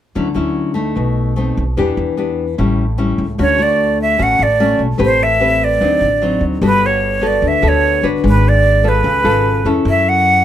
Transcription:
0.15 D2 D3 F#3 C#4 E4
0.34 D2 F#3 C#4 E4
0.74 A3 D#4
0.96 B1 B2
1.36 A3 C4 D#4
1.57 B1
1.77 E2 E3 B3 D4 G4
1.97 E2
2.17 B3 D4 G4
2.58 A1 A2 G3 C#4 E4
2.98 G3 C#4 E4
3.18 C#2
3.38 D2 D3 A3 C#4 F#4 C#5
3.58 A3 F#4
3.62 D5
4.02 E5
4.19 A1 A2 A3 C#4 F#4
4.23 F#5
4.39 A1 D5
4.60 A3 C#4 F#4
4.79 B1
4.98 A1 A3 C4 G4 B4
5.04 C5
5.23 E5
5.40 C4 G4 B4
5.64 D5
5.81 D2 D3 F#3 C4 D#4
6.01 A1
6.22 F#3 C4 D#4
6.41 D2
6.62 G1 G3 B3 F#4 A4 B4
6.86 C#5
7.21 B3 F#4 A4
7.27 D5
7.42 D2 D3
7.48 E5
7.62 D2 B3 F#4 A4
7.68 C#5
8.03 G1 D4 F#4 B4
8.23 G#1 G#3
8.28 B4
8.48 D5
8.84 B3 F4 A4
8.88 B4
9.03 C#2 C#3
9.24 G#1 B3 F4 A4
9.65 F2 C#4 E4 A4
9.85 F#2 F#3
9.89 E5
10.09 F#5

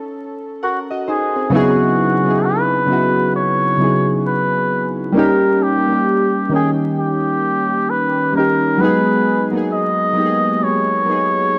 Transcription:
Already playing: C#4 A4
0.63 F#4 A#4 F#5
0.90 F#4 D#5
1.07 D#4 G#4 C5
1.36 C4 G#4
1.50 C#3 F#3 B3 D#4
1.54 E4 F#4 G#4
2.24 C#3 F#3 B3 D#4
2.29 E4 G#4
2.45 B4
2.86 C#3 F#3 B3 D#4
2.91 E4 F#4
3.36 C#5
3.77 C#3 F#3 B3 D#4
3.82 E4 G#4
4.27 B4
5.12 G3 A#3 C#4
5.17 D#4 G4 A#4
5.63 G4
5.87 G3 A#3 C#4
5.92 D#4 G4
6.49 D#3 A#3 C#4
6.54 D#4 G#4 G5
7.00 G4
7.90 B4
8.33 G3 A#3 C#4 A#4
8.38 D#4 G4
8.78 F#3 G#3 B3 B4
8.83 D#4 G#4
9.51 F#3 A#3 B3
9.56 D#4 G#4
9.73 D#5
10.13 F#3 A#3 B3
10.18 D#4 G4
10.26 G#4
10.64 C#5
11.05 F#3 A#3 B3
11.10 D#4 G#4

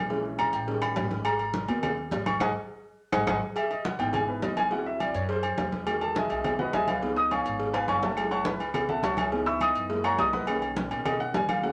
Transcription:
Already playing: A#1
0.10 E3 G#3 C#4, cowbell, high conga
0.25 high conga
0.39 A#5, cowbell, high conga, low timbale, low agogo, claves
0.53 A1 G5, high conga, low agogo
0.67 D#3 G3 C#4, cowbell, high conga
0.82 B5, high conga, low agogo, claves
0.96 G#1, cowbell, high conga, low timbale, low agogo
1.11 cowbell, high conga
1.25 A#5, cowbell, high conga, low agogo, claves
1.39 high conga, low agogo
1.54 cowbell, high conga, low timbale
1.68 D#2 F#3 A#3 B3, cowbell, low agogo
1.83 cowbell, high conga, low conga, low agogo, claves
1.97 high conga
2.11 G#1, cowbell, high conga, low timbale, low agogo
2.26 C#6, cowbell, high conga, low agogo, claves
2.40 G#1 D#5 F#5 G#5, cowbell, high conga, high timbale, claves
3.12 G#1 D#5 F#5 G#5, cowbell, high conga, high timbale, claves
3.27 G#1 D#5 F#5 G#5, cowbell, high conga, high timbale, claves
3.56 E5, cowbell, high conga, low agogo
3.71 D#5, high conga, low agogo
3.85 F#5, cowbell, high conga, low timbale
3.99 G#1 E3 B3 D#4 G5, cowbell, high conga, low agogo
4.13 G#5, cowbell, high conga, low conga, low agogo
4.28 B4, high conga
4.42 D2 D#5, cowbell, high conga, low timbale, low agogo
4.57 G#5, cowbell, high conga, low agogo
4.71 F#3 C4 E4 F#5, cowbell, high conga
4.86 E5, high conga
5.00 D5, cowbell, high conga, low timbale, low agogo
5.14 F#2 C#5, high conga, low agogo
5.29 C5, cowbell, high conga
5.43 high conga, low agogo
5.57 E2, cowbell, high conga, low timbale, low agogo
5.72 cowbell, high conga
5.87 D#3 F#3 G#3, cowbell, high conga, low agogo
6.01 A4 A5, high conga, low agogo
6.15 G#4 D#5 E5 G#5, cowbell, high conga, low timbale
6.30 B1, cowbell, high conga, low agogo
6.44 cowbell, high conga, low conga, low agogo
6.59 F#4 B4 D#5 F#5, high conga, low conga
6.73 C#2 G#4 D#5 E5 G#5, cowbell, high conga, low timbale, low agogo
6.88 F4 B4 C#5 F5, cowbell, high conga, low agogo
7.02 F3 B3 D#4, cowbell, high conga
7.16 D#5 D#6, high conga
7.31 C#5 F5 G#5 C#6, cowbell, high conga, low timbale, low agogo
7.45 G#1, high conga, low agogo
7.60 cowbell, high conga
7.74 B4 F5 G#5 B5, high conga, high timbale, low agogo
7.88 F#1 C#5 F5 G#5 C#6, cowbell, high conga, low agogo
8.02 A4 E5 F#5 A5, cowbell, high conga, low timbale
8.16 G#3 A3 E4, cowbell, high conga, low agogo, claves
8.31 C#5 F#5 A5 C#6, high conga, low agogo
8.45 B4 B5, cowbell, high conga, low timbale
8.59 C#2, cowbell, high conga, low agogo
8.74 cowbell, high conga, low conga, low agogo, claves
8.89 A4 E5 F#5 A5, high conga, low conga
9.03 C#2 C#5 F#5 A5 C#6, cowbell, high conga, low timbale, low agogo
9.17 G#4 C#5 E5 G#5, cowbell, high conga, low agogo, claves
9.32 E3 B3 D#4, cowbell, high conga
9.46 E5 B5 C#6 E6, high conga
9.61 D#5 D#6, cowbell, high conga, low timbale, low agogo, claves
9.75 F#2, high conga, low agogo
9.89 G#3 A#3 E4, cowbell, high conga
10.04 C#5 F#5 A#5 C#6, high conga, low agogo, claves
10.18 B1 D#5 D#6, cowbell, high conga, low timbale, low agogo
10.33 B4 D#5 F#5 B5, cowbell, high conga
10.47 D#3 A#3 C#4, cowbell, high conga, low agogo, claves
10.62 high conga, low agogo
10.76 cowbell, high conga, low timbale
10.91 B2, cowbell, high conga, low agogo
11.05 D#5, cowbell, high conga, low conga, low agogo, claves
11.20 F#5, high conga
11.34 D#2 G#5, cowbell, high conga, low timbale, low agogo
11.49 F5, cowbell, high conga, low agogo, claves
11.63 F#3 A3 C#4 F#5, cowbell, high conga

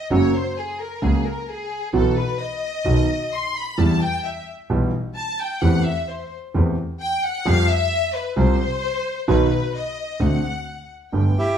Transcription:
Already playing: D#5
0.11 F#1 F#2 C#3 F#3 A#3 F#4 C#5
0.35 C5
0.58 G#4
0.80 A#4
1.02 C#2 C#3 F#3 A#3 F#4 G#4
1.26 A#4
1.49 G#4
1.93 B1 B2 E3 F#3 B3 F#4 A4
2.17 B4
2.41 D#5
2.85 B1 B2 D#3 F#3 B3 F#4
3.32 C6
3.55 B5
3.78 E2 E3 G3 B3 G4 A5
4.01 G5
4.24 E5
4.70 B1 B2 E3 G3 B3 G4
5.16 A5
5.39 G5
5.60 E2 E3 A3 C4 G4 F#5
5.84 E5
6.09 C5
6.54 E2 E3 A3 C4 G4
7.01 G5
7.23 F#5
7.45 F2 F3 G3 C4 G4 F5
7.69 E5
8.14 B4
8.36 C2 C3 F3 G3 C4 G4 C5
9.28 B1 B2 D#3 F#3 B3 F#4 B4
9.74 D#5
10.20 D2 D3 A3 C4 F#4 F#5
11.12 G1 G2 D3 A3 B3 G4 G5
11.38 E4 G4

